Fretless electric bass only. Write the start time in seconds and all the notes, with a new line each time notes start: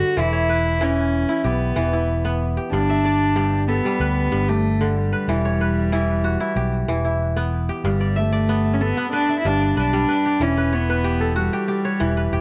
0.17 E1
1.44 B1
1.76 E1
2.72 G1
4.00 D2
4.32 G1
5.28 E1
6.56 B1
6.88 E1
7.84 G1
9.45 G1
9.77 B1
10.40 E1
12.01 E1
12.32 E1